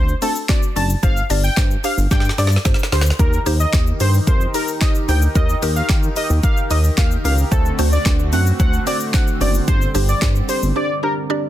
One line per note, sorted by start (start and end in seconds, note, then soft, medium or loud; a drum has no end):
0.00 0.14 D2 loud
0.00 0.15 C5 medium
0.09 shaker medium
0.22 0.35 A3 medium
0.22 0.35 C4 medium
0.22 0.35 D4 medium
0.22 0.36 F#4 medium
0.22 0.32 A4 medium
0.22 0.36 C5 medium
0.22 open hi-hat medium
0.22 shaker medium
0.36 shaker medium
0.49 0.62 A3 loud
0.49 0.62 C4 medium
0.49 0.63 D4 medium
0.49 0.63 F#4 medium
0.49 0.63 C5 loud
0.49 0.59 D5 medium
0.49 kick loud
0.49 snare medium
0.49 clap loud
0.49 closed hi-hat medium
0.49 shaker medium
0.63 shaker medium
0.76 0.95 F#1 medium
0.76 0.89 A3 medium
0.76 0.89 C4 medium
0.76 0.90 D4 medium
0.76 0.90 F#4 medium
0.76 0.90 D5 medium
0.76 0.86 A5 medium
0.76 open hi-hat medium
0.76 shaker medium
0.90 shaker medium
1.03 1.22 G1 loud
1.03 1.16 D4 loud
1.03 1.17 G4 loud
1.03 1.17 C5 loud
1.03 1.23 F5 loud
1.03 kick loud
1.03 closed hi-hat medium
1.03 shaker medium
1.17 shaker medium
1.30 1.49 G1 loud
1.30 1.43 D4 loud
1.30 1.44 G4 medium
1.30 1.44 D5 loud
1.30 open hi-hat medium
1.30 shaker medium
1.44 1.63 G5 medium
1.44 shaker medium
1.57 1.76 G2 loud
1.57 1.70 D4 medium
1.57 1.71 G4 medium
1.57 1.71 C5 medium
1.57 kick loud
1.57 snare loud
1.57 clap loud
1.57 closed hi-hat medium
1.57 shaker medium
1.71 shaker medium
1.84 1.97 D4 medium
1.84 1.98 G4 medium
1.84 1.98 C5 medium
1.84 1.94 F5 medium
1.84 open hi-hat medium
1.84 shaker medium
1.98 2.07 G1 medium
1.98 shaker medium
2.11 2.30 G2 loud
2.11 2.25 D4 medium
2.11 2.25 G4 medium
2.11 2.25 D5 medium
2.11 2.31 G5 medium
2.11 kick loud
2.11 snare medium
2.11 closed hi-hat medium
2.11 shaker medium
2.20 snare medium
2.25 shaker medium
2.29 snare medium
2.38 2.57 G2 medium
2.38 2.52 D4 medium
2.38 2.52 G4 medium
2.38 2.52 C5 medium
2.38 2.48 D5 medium
2.38 snare medium
2.38 open hi-hat medium
2.38 shaker medium
2.47 snare medium
2.52 shaker medium
2.56 snare medium
2.65 2.75 G1 loud
2.65 2.79 D4 loud
2.65 2.79 G4 loud
2.65 2.79 C5 loud
2.65 kick loud
2.65 snare medium
2.65 closed hi-hat medium
2.65 shaker medium
2.74 snare medium
2.79 shaker medium
2.83 snare loud
2.92 3.12 D2 medium
2.92 3.06 D4 medium
2.92 3.06 G4 medium
2.92 3.02 C5 medium
2.92 3.06 C5 medium
2.92 snare loud
2.92 open hi-hat medium
2.92 shaker medium
3.01 snare loud
3.06 shaker medium
3.10 snare loud
3.19 3.39 D#2 loud
3.19 7.48 D#3 medium
3.19 3.33 D#4 loud
3.19 7.48 D#4 medium
3.19 3.33 G4 loud
3.19 7.48 G4 medium
3.19 7.48 A#4 medium
3.19 3.33 A#4 loud
3.19 3.39 A#4 loud
3.19 kick loud
3.19 closed hi-hat medium
3.19 shaker medium
3.33 shaker medium
3.46 3.66 D#2 loud
3.46 3.60 D#4 loud
3.46 3.60 G4 loud
3.46 3.60 C5 loud
3.46 open hi-hat medium
3.46 shaker medium
3.60 3.79 D#5 medium
3.60 shaker medium
3.73 3.93 D#2 loud
3.73 3.87 D#4 medium
3.73 3.87 G4 medium
3.73 3.87 C5 medium
3.73 kick loud
3.73 snare loud
3.73 clap loud
3.73 closed hi-hat medium
3.73 shaker medium
3.87 shaker medium
4.00 4.20 G2 loud
4.00 4.14 D#4 medium
4.00 4.14 G4 medium
4.00 4.14 C5 medium
4.00 4.10 C5 medium
4.00 open hi-hat medium
4.00 shaker medium
4.14 shaker medium
4.27 4.47 F2 loud
4.27 4.41 D#4 medium
4.27 4.41 G4 medium
4.27 4.41 A#4 medium
4.27 4.47 C5 medium
4.27 kick loud
4.27 closed hi-hat medium
4.27 shaker medium
4.41 shaker medium
4.54 4.68 D#4 medium
4.54 4.68 G4 medium
4.54 4.64 A#4 medium
4.54 4.68 A#4 medium
4.54 open hi-hat medium
4.54 shaker medium
4.68 shaker medium
4.81 4.95 D#4 loud
4.81 4.95 G4 medium
4.81 4.95 C5 loud
4.81 4.91 D#5 medium
4.81 kick loud
4.81 snare medium
4.81 clap loud
4.81 closed hi-hat medium
4.81 shaker medium
4.95 shaker medium
5.08 5.28 D2 medium
5.08 5.22 D#4 medium
5.08 5.22 G4 medium
5.08 5.22 C5 medium
5.08 5.18 G5 medium
5.08 open hi-hat medium
5.08 shaker medium
5.22 shaker medium
5.35 5.55 D#2 loud
5.35 5.49 D#4 loud
5.35 5.49 G4 medium
5.35 5.49 A#4 loud
5.35 5.55 D#5 loud
5.35 kick loud
5.35 closed hi-hat medium
5.35 shaker medium
5.49 shaker medium
5.62 5.82 D#2 loud
5.62 5.76 D#4 loud
5.62 5.76 G4 loud
5.62 5.76 A#4 loud
5.62 open hi-hat medium
5.62 shaker medium
5.76 5.96 F5 medium
5.76 shaker medium
5.89 6.09 D#3 loud
5.89 6.03 D#4 medium
5.89 6.03 G4 medium
5.89 6.03 A#4 medium
5.89 kick loud
5.89 snare loud
5.89 clap loud
5.89 closed hi-hat medium
5.89 shaker medium
6.03 shaker medium
6.16 6.30 D#4 medium
6.16 6.30 G4 medium
6.16 6.30 A#4 medium
6.16 6.26 D#5 medium
6.16 open hi-hat medium
6.16 shaker medium
6.30 6.40 D#2 loud
6.30 shaker medium
6.43 6.57 D#4 medium
6.43 6.57 G4 medium
6.43 6.57 A#4 medium
6.43 6.63 F5 medium
6.43 kick loud
6.43 closed hi-hat medium
6.43 shaker medium
6.57 shaker medium
6.70 6.90 D#2 loud
6.70 6.84 D#4 medium
6.70 6.84 G4 medium
6.70 6.84 A#4 medium
6.70 6.80 D#5 medium
6.70 open hi-hat medium
6.70 shaker medium
6.84 shaker medium
6.97 7.17 D#2 loud
6.97 7.11 D#4 loud
6.97 7.11 G4 medium
6.97 7.11 A#4 loud
6.97 7.07 F5 medium
6.97 kick loud
6.97 snare medium
6.97 clap loud
6.97 closed hi-hat medium
6.97 shaker medium
7.11 shaker medium
7.24 7.44 C#2 medium
7.24 7.38 D#4 medium
7.24 7.38 G4 medium
7.24 7.38 A#4 medium
7.24 7.35 F5 medium
7.24 open hi-hat medium
7.24 shaker medium
7.38 shaker medium
7.51 7.71 D2 loud
7.51 11.49 D3 medium
7.51 7.65 A3 loud
7.51 9.66 A3 medium
7.51 7.65 C4 medium
7.51 11.49 C4 medium
7.51 7.65 D4 loud
7.51 7.65 F#4 loud
7.51 9.66 F#4 medium
7.51 7.71 A4 loud
7.51 7.65 C5 loud
7.51 kick loud
7.51 closed hi-hat medium
7.51 shaker medium
7.66 shaker medium
7.79 7.98 D2 medium
7.79 7.92 A3 loud
7.79 7.92 C4 loud
7.79 7.92 D4 loud
7.79 7.92 F#4 loud
7.79 7.92 C5 loud
7.79 open hi-hat medium
7.79 shaker medium
7.92 8.12 D5 medium
7.92 shaker medium
8.06 8.34 D2 loud
8.06 8.19 A3 medium
8.06 8.19 C4 medium
8.06 8.19 D4 medium
8.06 8.19 F#4 medium
8.06 8.19 B4 medium
8.06 kick loud
8.06 snare loud
8.06 clap loud
8.06 closed hi-hat medium
8.06 shaker medium
8.19 shaker soft
8.33 8.52 F#2 medium
8.33 8.46 A3 medium
8.33 8.46 C4 medium
8.33 8.46 D4 medium
8.33 8.46 F#4 medium
8.33 8.46 B4 medium
8.33 8.43 F#5 medium
8.33 open hi-hat medium
8.33 shaker medium
8.47 shaker medium
8.60 8.79 D2 loud
8.60 8.73 A3 medium
8.60 8.73 C4 medium
8.60 8.73 D4 medium
8.60 8.73 F#4 medium
8.60 8.73 C5 medium
8.60 8.79 F#5 medium
8.60 kick loud
8.60 closed hi-hat medium
8.60 shaker medium
8.73 shaker medium
8.87 9.00 A3 medium
8.87 9.00 C4 medium
8.87 9.00 D4 medium
8.87 9.00 F#4 medium
8.87 9.00 C5 medium
8.87 8.97 D5 medium
8.87 open hi-hat medium
8.87 shaker medium
9.00 shaker medium
9.14 9.27 A3 loud
9.14 9.27 C4 medium
9.14 9.27 D4 medium
9.14 9.27 F#4 medium
9.14 9.27 C5 loud
9.14 9.24 F#5 medium
9.14 kick loud
9.14 snare medium
9.14 clap loud
9.14 closed hi-hat medium
9.14 shaker medium
9.27 shaker medium
9.41 9.60 F#1 loud
9.41 9.54 A3 medium
9.41 9.54 C4 medium
9.41 9.54 D4 medium
9.41 9.54 F#4 medium
9.41 9.54 C5 medium
9.41 9.51 D5 medium
9.41 open hi-hat medium
9.41 shaker medium
9.55 shaker medium
9.68 9.87 G1 loud
9.68 11.49 G3 medium
9.68 9.81 D4 loud
9.68 9.81 G4 medium
9.68 9.87 C5 loud
9.68 9.82 C5 loud
9.68 kick loud
9.68 closed hi-hat medium
9.68 shaker medium
9.82 shaker medium
9.94 10.14 G1 loud
9.94 10.08 D4 loud
9.94 10.08 G4 loud
9.94 10.08 C5 loud
9.94 open hi-hat medium
9.94 shaker medium
10.09 10.28 D5 medium
10.09 shaker medium
10.22 10.41 G2 loud
10.22 10.35 D4 medium
10.22 10.35 G4 medium
10.22 10.36 C5 medium
10.22 kick loud
10.22 snare loud
10.22 clap loud
10.22 closed hi-hat medium
10.22 shaker medium
10.35 shaker medium
10.49 10.62 D4 medium
10.49 10.62 G4 medium
10.49 10.63 C5 medium
10.49 10.59 C5 medium
10.49 open hi-hat medium
10.49 shaker medium
10.63 10.72 G1 medium
10.63 shaker medium
10.76 10.89 D4 medium
10.76 10.89 G4 medium
10.76 10.90 C5 medium
10.76 10.96 D5 medium
11.03 11.16 D4 medium
11.03 11.17 G4 medium
11.03 11.13 A#4 medium
11.03 11.17 C5 medium
11.30 11.43 D4 loud
11.30 11.44 G4 loud
11.30 11.44 D5 loud